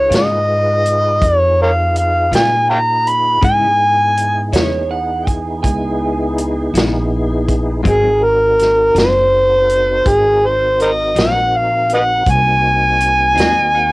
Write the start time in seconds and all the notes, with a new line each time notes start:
Already playing: D#4 F4 G#4 B4 C#5
0.10 G#2 C#3 G#3 B3 F4, closed hi-hat
0.14 D#5, snare
0.86 closed hi-hat
1.22 F2 C#5, kick, closed hi-hat
1.62 A#4 C#5 F5
1.96 F5, closed hi-hat
2.32 A#2 C#3 G#3 B3 F4 G#5, snare, closed hi-hat
2.70 F5 G5 A#5
3.07 B5, closed hi-hat
3.42 G#2 C#3 G#3 B3 D#4 E4 G#4 G#5, kick, closed hi-hat
4.17 closed hi-hat
4.52 E2 C#3 G#3 B3 E4 C#5, snare, closed hi-hat
4.91 F#5
5.27 G#5, kick, closed hi-hat
5.63 C#2 G#5, kick, closed hi-hat
6.38 closed hi-hat
6.74 A#1 C#3 G#3 B3 E4, snare, closed hi-hat
7.48 kick, closed hi-hat
7.83 G#1 G#2 F#3 C4 D#4 F#4 A#4, kick, closed hi-hat
7.87 G#4
8.24 A#4
8.59 snare, closed hi-hat
8.95 F#1 G#2 F#3 C4 D#4, snare, closed hi-hat
9.00 C5
9.70 closed hi-hat
10.06 G#1 G#4, kick, closed hi-hat
10.46 C5
10.80 A#4 C5 D#5, closed hi-hat
11.15 A#1 G#2 F#3 C4 D#4 F#5, snare, closed hi-hat
11.57 F5
11.89 closed hi-hat
11.94 B4 D#5 F#5
12.26 C2 A#3 C4 D#4 F#4 G#5, kick, closed hi-hat
13.00 closed hi-hat
13.35 D#2 G#2 F#3 C4 D#4, closed hi-hat
13.39 D#5, snare
13.75 F#5